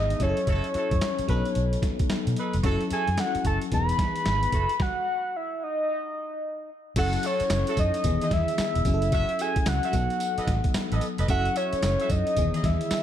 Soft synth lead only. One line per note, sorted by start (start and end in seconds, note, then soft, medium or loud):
0.00 0.24 D#5 medium
0.22 2.38 C#5 loud
2.93 3.21 G#5 loud
3.20 3.46 F#5 medium
3.47 3.58 A5 loud
3.74 4.83 B5 loud
4.82 5.38 F#5 loud
5.36 5.65 E5 medium
5.63 6.70 D#5 medium
6.99 7.28 F#5 medium
7.26 7.79 C#5 medium
7.79 8.34 D#5 loud
8.33 9.13 E5 loud
9.14 9.43 E5 loud
9.41 9.69 G#5 loud
9.68 11.02 F#5 loud
11.30 11.58 F#5 loud
11.57 12.13 C#5 loud
12.11 12.60 D#5 loud
12.60 12.66 D#5 medium
12.65 13.03 E5 loud